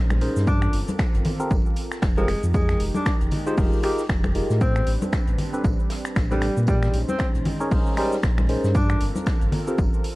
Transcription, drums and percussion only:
0.10 finger snap, high conga, shaker
0.21 open hi-hat, tambourine
0.36 snare, shaker
0.47 kick, tambourine, shaker
0.62 finger snap, shaker
0.73 open hi-hat, tambourine
0.88 closed hi-hat, high conga, shaker
0.99 finger snap, kick, snare, tambourine, shaker
1.14 closed hi-hat, shaker
1.25 open hi-hat, tambourine, low conga
1.40 shaker
1.50 kick, tambourine, high conga, shaker
1.66 shaker
1.76 open hi-hat, tambourine
1.92 finger snap, snare, shaker
2.02 finger snap, kick, snare, tambourine, shaker
2.17 closed hi-hat, high conga, shaker
2.28 finger snap, open hi-hat, tambourine
2.43 shaker
2.54 kick, tambourine, shaker
2.69 finger snap, snare, shaker
2.80 open hi-hat, tambourine
2.94 high conga, shaker
3.06 finger snap, kick, snare, tambourine, shaker
3.21 closed hi-hat, shaker
3.31 open hi-hat, tambourine, low conga
3.47 shaker
3.57 kick, open hi-hat, high conga, shaker
3.73 shaker
3.83 finger snap, open hi-hat, tambourine
3.99 snare, shaker
4.09 finger snap, kick, snare, tambourine, shaker
4.24 finger snap, high conga, shaker
4.35 open hi-hat, tambourine
4.50 snare, shaker
4.61 kick, tambourine, shaker
4.76 finger snap, shaker
4.87 open hi-hat, tambourine
5.02 closed hi-hat, high conga, shaker
5.13 finger snap, kick, snare, tambourine, shaker
5.27 closed hi-hat, shaker
5.38 open hi-hat, tambourine, low conga
5.54 shaker
5.64 kick, tambourine, high conga, shaker
5.79 shaker
5.90 snare, open hi-hat, tambourine
6.05 finger snap, closed hi-hat, shaker
6.16 finger snap, kick, snare, tambourine, shaker
6.31 closed hi-hat, high conga, shaker
6.42 finger snap, open hi-hat, tambourine
6.57 shaker
6.67 kick, tambourine, shaker
6.83 finger snap, snare, shaker
6.94 open hi-hat, tambourine
7.09 high conga, shaker
7.19 finger snap, kick, snare, tambourine, shaker
7.35 closed hi-hat, shaker
7.45 open hi-hat, tambourine, low conga
7.61 shaker
7.71 kick, open hi-hat, high conga, shaker
7.86 shaker
7.97 finger snap, open hi-hat, tambourine
8.12 snare, shaker
8.23 finger snap, kick, snare, tambourine, shaker
8.38 finger snap, high conga, shaker
8.49 open hi-hat, tambourine
8.64 snare, shaker
8.75 kick, tambourine, shaker
8.90 finger snap, shaker
9.01 open hi-hat, tambourine
9.15 closed hi-hat, high conga, shaker
9.26 finger snap, kick, snare, tambourine, shaker
9.41 closed hi-hat, shaker
9.52 open hi-hat, tambourine, low conga
9.68 shaker
9.78 kick, tambourine, high conga, shaker
9.93 shaker
10.04 open hi-hat, tambourine

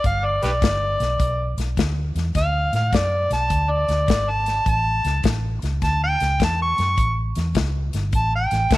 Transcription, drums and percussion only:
0.04 kick, closed hi-hat
0.42 snare, closed hi-hat
0.62 kick, snare, closed hi-hat
1.00 snare, closed hi-hat
1.20 kick, closed hi-hat
1.58 snare, closed hi-hat
1.77 kick, snare, closed hi-hat
2.16 snare, closed hi-hat
2.35 kick, snare, closed hi-hat
2.73 snare, closed hi-hat
2.93 kick, snare, closed hi-hat
3.31 snare, closed hi-hat
3.50 kick, closed hi-hat
3.88 snare, closed hi-hat
4.08 kick, snare, closed hi-hat
4.46 snare, closed hi-hat
4.66 kick, closed hi-hat
5.04 snare, closed hi-hat
5.24 kick, snare, closed hi-hat
5.62 snare, closed hi-hat
5.82 kick, snare, closed hi-hat
6.20 snare, closed hi-hat
6.40 kick, snare, closed hi-hat
6.78 snare, closed hi-hat
6.98 kick, closed hi-hat
7.35 snare, closed hi-hat
7.55 kick, snare, closed hi-hat
7.93 snare, closed hi-hat
8.13 kick, closed hi-hat
8.51 snare, closed hi-hat
8.71 kick, snare, closed hi-hat

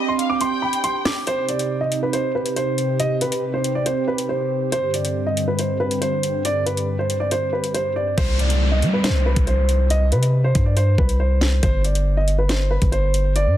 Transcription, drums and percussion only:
0.19 closed hi-hat
0.41 closed hi-hat
0.73 closed hi-hat
0.84 closed hi-hat
1.05 cross-stick, snare, open hi-hat
1.27 closed hi-hat
1.49 closed hi-hat
1.59 closed hi-hat
1.92 closed hi-hat
2.13 closed hi-hat
2.46 closed hi-hat
2.56 closed hi-hat
2.78 closed hi-hat
3.00 closed hi-hat
3.21 closed hi-hat
3.32 closed hi-hat
3.64 closed hi-hat
3.86 closed hi-hat
4.18 closed hi-hat
4.72 closed hi-hat
4.94 closed hi-hat
5.05 closed hi-hat
5.37 closed hi-hat
5.59 closed hi-hat
5.91 closed hi-hat
6.02 closed hi-hat
6.23 closed hi-hat
6.45 closed hi-hat
6.67 closed hi-hat
6.77 closed hi-hat
7.10 closed hi-hat
7.31 closed hi-hat
7.64 closed hi-hat
7.75 closed hi-hat
8.18 kick, closed hi-hat, crash
8.39 closed hi-hat
8.50 closed hi-hat
8.82 closed hi-hat
9.04 snare, closed hi-hat
9.36 kick, closed hi-hat
9.47 closed hi-hat
9.69 closed hi-hat
9.90 closed hi-hat
10.12 closed hi-hat
10.23 closed hi-hat
10.55 kick, closed hi-hat
10.77 closed hi-hat
10.98 kick
11.09 closed hi-hat
11.41 snare
11.63 kick, closed hi-hat
11.85 closed hi-hat
11.95 closed hi-hat
12.28 closed hi-hat
12.49 snare, closed hi-hat
12.82 kick, closed hi-hat
12.92 closed hi-hat
13.14 closed hi-hat
13.36 closed hi-hat

